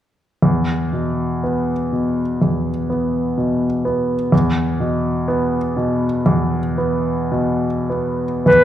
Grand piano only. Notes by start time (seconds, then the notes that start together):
0.42 E2
0.93 B2
1.44 B3
1.92 B2
2.42 E2
2.90 B3
3.38 B2
3.85 B3
4.32 E2
4.80 B2
5.28 B3
5.77 B2
6.26 E2
6.78 B3
7.32 B2
7.90 B3
8.46 E2